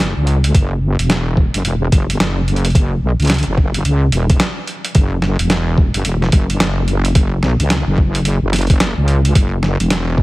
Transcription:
0.00 0.14 F#1 medium
0.00 snare loud
0.00 closed hi-hat medium
0.17 0.53 C#2 medium
0.27 closed hi-hat soft
0.44 closed hi-hat medium
0.54 0.96 F#1 loud
0.54 kick loud
0.54 closed hi-hat medium
0.98 1.51 E1 medium
0.98 closed hi-hat soft
1.10 snare loud
1.10 closed hi-hat medium
1.37 kick loud
1.54 1.63 F#1 loud
1.54 closed hi-hat medium
1.64 1.90 E1 medium
1.64 closed hi-hat medium
1.92 2.18 F#1 medium
1.92 kick loud
1.92 closed hi-hat medium
2.10 closed hi-hat medium
2.19 3.00 F#1 medium
2.19 snare loud
2.19 closed hi-hat medium
2.48 closed hi-hat soft
2.56 closed hi-hat soft
2.65 closed hi-hat medium
2.70 closed hi-hat soft
2.75 kick loud
2.75 closed hi-hat medium
3.02 3.17 B1 medium
3.19 3.44 C#2 medium
3.19 closed hi-hat soft
3.22 closed hi-hat soft
3.25 closed hi-hat soft
3.27 snare loud
3.27 closed hi-hat soft
3.30 closed hi-hat medium
3.34 closed hi-hat soft
3.38 closed hi-hat soft
3.43 closed hi-hat soft
3.47 3.83 F#1 medium
3.58 kick loud
3.74 closed hi-hat soft
3.85 4.11 C#2 medium
3.85 closed hi-hat medium
4.12 4.38 E1 loud
4.12 closed hi-hat medium
4.30 kick loud
4.30 closed hi-hat soft
4.40 snare loud
4.40 closed hi-hat medium
4.67 closed hi-hat soft
4.85 closed hi-hat medium
4.95 5.37 F#1 medium
4.95 kick loud
4.95 closed hi-hat medium
5.22 snare soft
5.39 5.92 E1 medium
5.39 closed hi-hat soft
5.50 snare loud
5.50 closed hi-hat medium
5.78 kick loud
5.94 6.03 F#1 loud
5.94 closed hi-hat soft
6.05 6.31 E1 medium
6.05 closed hi-hat medium
6.22 snare soft
6.32 6.58 F#1 loud
6.32 kick loud
6.32 closed hi-hat medium
6.50 closed hi-hat soft
6.60 7.41 F#1 medium
6.60 snare loud
6.60 closed hi-hat medium
6.88 closed hi-hat soft
7.05 closed hi-hat soft
7.15 kick loud
7.15 closed hi-hat medium
7.42 7.57 B1 medium
7.42 snare soft
7.60 7.84 C#2 medium
7.60 closed hi-hat soft
7.70 snare loud
7.70 closed hi-hat medium
7.87 8.39 F#1 medium
7.98 kick medium
8.15 closed hi-hat soft
8.25 closed hi-hat medium
8.42 8.95 F#1 medium
8.53 snare medium
8.53 closed hi-hat medium
8.56 closed hi-hat soft
8.59 closed hi-hat soft
8.61 closed hi-hat soft
8.67 kick loud
8.67 closed hi-hat soft
8.70 closed hi-hat soft
8.80 snare loud
8.80 closed hi-hat medium
8.97 9.34 C#2 loud
9.08 closed hi-hat soft
9.25 closed hi-hat medium
9.35 9.77 F#1 loud
9.35 kick loud
9.35 closed hi-hat medium
9.63 snare soft
9.80 10.23 E1 medium
9.80 closed hi-hat soft
9.90 snare loud
9.90 closed hi-hat medium
10.18 kick medium

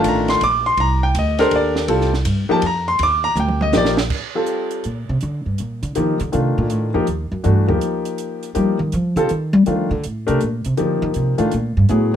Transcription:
0.00 0.39 D#3 medium
0.00 0.39 A3 medium
0.00 0.39 D4 medium
0.00 0.39 F4 medium
0.04 0.40 A1 medium
0.04 hi-hat pedal medium
0.04 ride medium
0.08 0.30 A#5 medium
0.28 0.41 C6 loud
0.28 snare medium
0.28 ride soft
0.41 0.77 A#1 medium
0.41 0.66 D6 loud
0.41 ride medium
0.66 0.78 C6 loud
0.77 1.14 C2 medium
0.77 1.03 A#5 medium
0.77 ride medium
1.03 1.15 G5 loud
1.15 1.51 D2 loud
1.15 hi-hat pedal medium
1.15 ride medium
1.19 1.40 D#5 medium
1.38 1.86 D4 medium
1.38 1.86 G4 medium
1.38 1.86 A4 medium
1.38 1.86 A#4 medium
1.38 1.52 C5 medium
1.38 snare soft
1.38 ride medium
1.51 1.88 D#2 medium
1.51 ride medium
1.56 2.11 D5 medium
1.76 snare medium
1.88 2.24 C2 medium
1.88 2.10 G3 medium
1.88 2.10 C4 medium
1.88 2.10 F4 medium
1.88 2.10 A4 medium
1.88 ride medium
2.01 snare soft
2.14 snare soft
2.25 2.48 G2 medium
2.25 hi-hat pedal medium
2.25 ride medium
2.49 2.61 F3 medium
2.49 2.61 A#3 medium
2.49 2.61 D#4 medium
2.49 2.61 G4 medium
2.49 2.63 A5 loud
2.49 muted upright bass stroke soft
2.62 2.98 F2 medium
2.62 ride medium
2.66 2.88 A#5 medium
2.88 3.00 C6 loud
2.99 3.35 D#2 medium
2.99 ride medium
3.03 3.25 D6 loud
3.24 3.36 A#5 loud
3.35 3.72 D2 loud
3.35 hi-hat pedal medium
3.35 mid tom medium
3.40 3.62 G5 medium
3.49 mid tom medium
3.61 3.74 D#5 medium
3.61 mid tom medium
3.73 4.09 A#1 loud
3.73 3.95 F3 medium
3.73 3.95 A#3 medium
3.73 3.95 D#4 medium
3.73 3.95 G4 medium
3.73 snare medium
3.73 hi-hat pedal medium
3.78 3.91 D5 loud
3.85 snare medium
3.97 snare loud
4.10 kick medium
4.10 crash medium
4.35 4.82 G3 medium
4.35 4.82 C4 medium
4.35 4.82 F4 soft
4.35 4.83 A4 medium
4.46 closed hi-hat soft
4.71 closed hi-hat soft
4.84 5.08 A#2 medium
4.84 closed hi-hat soft
5.09 5.21 C3 medium
5.21 5.45 D3 medium
5.21 closed hi-hat soft
5.46 5.58 G2 medium
5.58 5.82 A#2 medium
5.58 closed hi-hat soft
5.83 5.95 D3 medium
5.83 closed hi-hat soft
5.95 6.20 D#3 medium
5.95 6.17 F3 medium
5.95 6.17 A#3 medium
5.95 6.18 D#4 soft
5.95 6.17 G4 medium
5.95 closed hi-hat soft
6.20 6.33 D3 medium
6.20 closed hi-hat soft
6.32 6.57 C3 medium
6.32 6.89 D#3 medium
6.32 6.89 A3 soft
6.32 6.89 D4 soft
6.32 6.89 F4 medium
6.32 closed hi-hat soft
6.58 6.72 A#2 medium
6.70 6.94 A2 medium
6.70 closed hi-hat soft
6.94 7.07 F2 medium
6.94 7.05 F3 medium
6.94 7.06 A#3 medium
6.94 7.06 D#4 medium
6.94 7.06 G4 medium
7.07 7.31 D#2 medium
7.07 closed hi-hat soft
7.32 7.44 F#2 medium
7.44 7.68 G2 medium
7.44 7.66 E3 medium
7.44 7.66 A3 medium
7.44 7.66 D4 medium
7.44 7.66 F#4 medium
7.44 closed hi-hat soft
7.68 7.76 D#2 medium
7.68 8.47 F3 medium
7.68 8.47 A#3 medium
7.68 8.47 D#4 medium
7.68 8.47 G4 medium
7.81 closed hi-hat soft
8.05 closed hi-hat soft
8.18 closed hi-hat soft
8.43 closed hi-hat soft
8.55 8.77 F3 medium
8.55 8.79 G3 medium
8.55 8.77 A#3 soft
8.55 8.77 D#4 soft
8.55 8.77 G4 medium
8.55 closed hi-hat soft
8.79 8.92 D#3 medium
8.92 9.15 F3 medium
8.92 closed hi-hat soft
9.16 9.29 D3 medium
9.16 9.28 G3 medium
9.16 9.28 C4 medium
9.16 9.28 F4 medium
9.16 9.28 A4 medium
9.16 closed hi-hat soft
9.29 9.53 D#3 medium
9.29 closed hi-hat soft
9.53 9.66 G3 loud
9.66 9.88 D#3 medium
9.66 9.90 F3 medium
9.66 9.89 A3 soft
9.66 9.88 D4 soft
9.66 9.89 F4 medium
9.66 closed hi-hat soft
9.91 10.03 D3 medium
10.04 10.28 A2 medium
10.04 closed hi-hat soft
10.27 10.41 C3 medium
10.27 10.39 A3 medium
10.27 10.39 D4 medium
10.27 10.39 G4 medium
10.27 10.39 A#4 medium
10.27 closed hi-hat soft
10.41 10.65 A#2 medium
10.41 closed hi-hat soft
10.65 10.78 C3 medium
10.65 closed hi-hat soft
10.77 11.01 D3 medium
10.77 11.34 F3 medium
10.77 11.34 A#3 soft
10.77 11.34 D#4 soft
10.77 11.34 G4 medium
10.77 closed hi-hat soft
11.02 11.14 D#3 loud
11.14 11.39 C3 medium
11.14 closed hi-hat soft
11.38 11.52 A2 medium
11.38 11.50 D#3 medium
11.38 11.50 A3 medium
11.38 11.50 D4 medium
11.38 11.50 F4 medium
11.38 closed hi-hat soft
11.51 11.76 A#2 medium
11.51 closed hi-hat soft
11.77 11.89 G2 medium
11.89 12.13 A2 loud
11.89 12.11 F#3 medium
11.89 12.11 B3 soft
11.89 12.11 E4 soft
11.89 12.11 G#4 medium
11.89 closed hi-hat soft

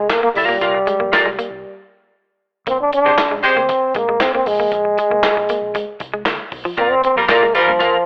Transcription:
0.00 0.11 G#3 medium
0.10 0.22 A#3 medium
0.10 snare loud
0.10 clap medium
0.10 closed hi-hat medium
0.23 0.29 A#3 medium
0.23 0.32 A#3 medium
0.35 0.47 C2 loud
0.35 1.86 G3 medium
0.35 0.56 F4 medium
0.35 0.57 A#4 medium
0.35 0.57 F5 medium
0.35 muted clean electric guitar stroke soft
0.35 open hi-hat medium
0.48 0.60 B1 medium
0.48 0.57 A#3 medium
0.61 0.84 C2 loud
0.61 0.77 F4 medium
0.61 0.78 A#4 medium
0.61 0.78 F5 medium
0.61 kick loud
0.61 closed hi-hat loud
0.74 muted clean electric guitar stroke soft
0.87 0.96 G#3 medium
0.87 closed hi-hat medium
0.99 1.11 F2 medium
0.99 1.09 A#3 medium
1.12 1.28 F4 medium
1.12 1.29 A#4 medium
1.12 1.29 D5 medium
1.12 muted clean electric guitar stroke soft
1.12 snare loud
1.12 clap medium
1.12 closed hi-hat loud
1.25 1.37 C2 medium
1.25 1.34 G#3 medium
1.39 1.47 A#3 medium
1.39 closed hi-hat medium
1.51 1.62 C2 medium
2.67 2.90 A#1 medium
2.67 2.76 A#3 medium
2.67 2.80 C4 loud
2.67 kick loud
2.67 closed hi-hat medium
2.81 2.92 D4 loud
2.93 3.35 D4 loud
2.93 muted clean electric guitar stroke soft
2.93 closed hi-hat medium
3.04 3.16 C2 medium
3.04 3.13 G#3 medium
3.04 3.15 C4 medium
3.04 3.13 G4 medium
3.04 3.13 C5 medium
3.18 snare loud
3.18 clap medium
3.18 closed hi-hat medium
3.30 3.42 A#1 medium
3.30 3.40 G#3 medium
3.38 3.47 D4 medium
3.43 3.60 G#3 loud
3.43 3.97 C4 medium
3.43 3.60 G4 loud
3.43 3.60 C5 loud
3.43 muted clean electric guitar stroke soft
3.43 closed hi-hat medium
3.56 3.68 D2 medium
3.56 3.66 A#3 medium
3.69 muted clean electric guitar stroke soft
3.69 kick loud
3.69 closed hi-hat medium
3.95 4.18 A#1 medium
3.95 4.05 G#3 medium
3.95 4.23 A#3 medium
3.95 kick medium
3.95 closed hi-hat medium
4.09 4.17 G#3 medium
4.20 4.34 C4 loud
4.20 snare loud
4.20 clap medium
4.20 closed hi-hat medium
4.35 4.43 A#3 medium
4.35 4.49 C4 medium
4.46 4.59 A#1 loud
4.46 6.01 G#3 medium
4.46 muted clean electric guitar stroke soft
4.46 open hi-hat medium
4.59 4.71 A1 medium
4.59 4.68 A#3 medium
4.72 4.95 A#1 loud
4.72 kick loud
4.72 closed hi-hat medium
4.85 muted clean electric guitar stroke soft
4.98 5.07 G#3 medium
4.98 closed hi-hat medium
5.10 5.22 C2 medium
5.10 5.20 A#3 medium
5.23 muted clean electric guitar stroke soft
5.23 snare loud
5.23 clap loud
5.23 closed hi-hat loud
5.35 5.47 A#1 medium
5.35 5.46 G#3 medium
5.49 5.58 A#3 medium
5.49 closed hi-hat medium
5.62 5.73 A#1 medium
5.75 5.84 G#3 medium
5.75 kick loud
5.75 closed hi-hat medium
6.00 6.23 C2 medium
6.00 muted clean electric guitar stroke soft
6.00 kick medium
6.00 closed hi-hat medium
6.14 6.22 G#3 medium
6.26 6.38 D2 medium
6.26 6.35 A#3 medium
6.26 snare loud
6.26 clap medium
6.26 closed hi-hat medium
6.52 6.63 B1 medium
6.52 muted clean electric guitar stroke soft
6.52 kick medium
6.52 open hi-hat medium
6.65 6.74 F3 medium
6.77 7.01 C2 loud
6.77 6.92 A#3 loud
6.77 6.87 C4 medium
6.77 6.93 F4 medium
6.77 6.94 A#4 medium
6.77 6.94 D5 medium
6.77 kick loud
6.77 closed hi-hat medium
6.91 7.03 C4 loud
7.04 7.16 C4 medium
7.04 muted clean electric guitar stroke soft
7.04 closed hi-hat medium
7.16 7.27 F2 medium
7.16 7.25 G3 medium
7.16 7.26 A#3 medium
7.16 7.25 F4 medium
7.16 7.25 A#4 loud
7.28 7.57 A#3 medium
7.28 7.45 F4 medium
7.28 7.45 A#4 medium
7.28 7.46 D5 medium
7.28 snare loud
7.28 clap medium
7.28 closed hi-hat medium
7.42 7.53 C2 medium
7.42 7.51 G#3 medium
7.54 8.06 F3 medium
7.54 7.71 G3 loud
7.54 7.71 F4 medium
7.54 7.71 A#4 loud
7.54 muted clean electric guitar stroke soft
7.54 closed hi-hat medium
7.67 7.79 G2 medium
7.67 7.77 A#3 medium
7.79 7.96 F4 loud
7.79 7.96 A#4 loud
7.79 7.97 F5 loud
7.79 muted clean electric guitar stroke soft
7.79 kick loud
7.79 closed hi-hat loud

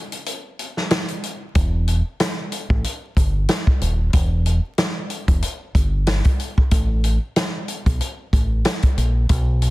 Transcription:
0.12 closed hi-hat medium
0.26 closed hi-hat medium
0.59 closed hi-hat medium
0.77 snare soft
0.90 snare loud
0.90 closed hi-hat loud
1.08 closed hi-hat medium
1.23 closed hi-hat medium
1.55 2.01 E1 loud
1.55 kick loud
1.55 closed hi-hat loud
1.88 closed hi-hat medium
2.20 snare loud
2.20 closed hi-hat loud
2.52 closed hi-hat medium
2.70 2.83 A1 medium
2.70 kick loud
2.84 closed hi-hat medium
3.17 3.46 G1 medium
3.17 kick medium
3.17 closed hi-hat medium
3.49 snare loud
3.49 closed hi-hat loud
3.67 kick loud
3.81 4.10 D#1 medium
3.81 closed hi-hat medium
4.13 4.59 E1 loud
4.13 kick loud
4.13 closed hi-hat loud
4.46 closed hi-hat medium
4.78 snare loud
4.78 closed hi-hat loud
5.10 closed hi-hat medium
5.28 5.41 E1 medium
5.28 kick loud
5.28 closed hi-hat medium
5.42 closed hi-hat medium
5.75 6.20 G1 medium
5.75 kick medium
5.75 closed hi-hat medium
6.07 snare loud
6.07 closed hi-hat loud
6.24 kick loud
6.24 closed hi-hat medium
6.40 closed hi-hat medium
6.58 kick loud
6.71 7.17 A1 loud
6.71 kick loud
6.71 closed hi-hat loud
7.04 closed hi-hat medium
7.36 snare loud
7.36 closed hi-hat loud
7.68 closed hi-hat medium
7.86 7.99 B1 medium
7.86 kick loud
7.86 closed hi-hat medium
8.01 closed hi-hat medium
8.33 8.62 A1 medium
8.33 kick medium
8.33 closed hi-hat medium
8.65 snare loud
8.65 closed hi-hat loud
8.82 kick loud
8.82 closed hi-hat medium
8.97 9.26 A#1 medium
8.97 closed hi-hat medium
9.29 9.70 B1 loud
9.29 kick loud
9.29 closed hi-hat loud
9.62 closed hi-hat medium

